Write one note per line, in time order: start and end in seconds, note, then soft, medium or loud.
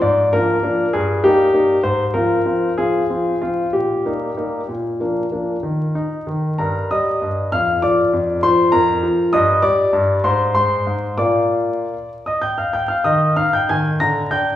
0.02 0.31 G#2 medium
0.02 0.32 D5 medium
0.33 0.55 F3 soft
0.33 0.55 A#3 soft
0.33 0.55 D4 soft
0.33 0.89 A#4 medium
0.63 0.85 F3 soft
0.63 0.85 A#3 soft
0.63 0.85 D4 soft
0.93 1.23 G2 medium
0.93 1.24 G#4 medium
1.24 1.46 G3 soft
1.24 1.46 A#3 soft
1.24 1.46 D#4 medium
1.24 1.81 G4 medium
1.54 1.76 G3 soft
1.54 1.76 A#3 soft
1.54 1.76 D#4 soft
1.83 2.14 G#2 medium
1.83 2.02 C5 medium
2.14 2.37 F3 soft
2.14 2.37 C4 soft
2.14 2.37 F4 soft
2.14 2.73 A#4 medium
2.45 2.68 F3 soft
2.45 2.69 C4 soft
2.45 2.69 F4 soft
2.78 3.01 F3 soft
2.78 3.01 C4 soft
2.78 3.01 F4 soft
2.78 3.41 G#4 medium
3.10 3.33 F3 soft
3.10 3.33 C4 soft
3.10 3.33 F4 soft
3.42 3.65 F3 soft
3.42 3.65 C4 soft
3.42 3.70 F4 medium
3.73 4.05 A#2 soft
3.73 4.69 G4 medium
4.05 4.28 G3 soft
4.05 4.29 A#3 soft
4.05 4.29 D#4 soft
4.37 4.60 G3 soft
4.37 4.60 A#3 soft
4.37 4.60 D#4 soft
4.69 4.99 A#2 soft
5.00 5.23 F3 soft
5.00 5.24 A#3 soft
5.00 5.24 D4 soft
5.31 5.55 F3 soft
5.31 5.55 A#3 soft
5.31 5.55 D4 soft
5.63 5.94 D#3 soft
5.95 6.26 D#4 soft
6.27 6.58 D#3 soft
6.58 6.90 G2 medium
6.58 6.89 A#4 soft
6.58 6.91 A#5 medium
6.91 7.21 G3 soft
6.91 7.49 D#5 medium
6.91 7.28 D#6 medium
7.22 7.52 G2 soft
7.52 7.82 F2 medium
7.52 7.81 F5 medium
7.52 7.71 F6 medium
7.82 8.12 F3 medium
7.82 8.40 D5 medium
7.82 8.43 D6 medium
8.13 8.43 F2 medium
8.43 8.73 F3 medium
8.43 8.72 C5 medium
8.43 8.70 C6 medium
8.72 9.02 F2 medium
8.72 9.29 A#4 medium
8.72 9.29 A#5 loud
9.03 9.32 F3 medium
9.33 9.62 G2 medium
9.33 9.61 D#5 medium
9.33 9.63 D#6 loud
9.62 9.92 G3 medium
9.62 10.20 D5 medium
9.62 9.99 D6 medium
9.93 10.23 G2 medium
10.24 10.54 G#2 medium
10.24 10.53 C5 medium
10.24 10.43 C6 medium
10.55 10.85 G#3 medium
10.55 11.14 C5 medium
10.55 10.92 C6 medium
10.87 11.17 G#2 medium
11.17 11.84 A#2 soft
11.17 11.93 A#3 soft
11.17 11.93 F4 soft
11.17 12.08 D5 medium
11.17 12.11 D6 medium
12.26 12.42 D#5 medium
12.26 12.42 D#6 medium
12.42 12.58 G5 soft
12.42 12.58 G6 medium
12.58 12.73 F5 soft
12.58 12.74 F6 medium
12.73 12.89 G5 medium
12.73 12.90 G6 medium
12.88 13.05 F5 medium
12.88 13.05 F6 medium
13.04 13.36 D#3 medium
13.04 13.35 D#5 medium
13.04 13.33 D#6 medium
13.36 13.68 D#4 medium
13.36 13.52 F5 medium
13.36 13.53 F6 medium
13.53 13.69 G5 medium
13.53 13.69 G6 medium
13.69 14.00 D#3 medium
13.69 13.99 G#5 medium
13.69 14.01 G#6 medium
14.00 14.31 D3 medium
14.00 14.30 A#5 medium
14.00 14.31 A#6 medium
14.31 14.56 D4 medium
14.31 14.56 G5 medium
14.31 14.50 G6 medium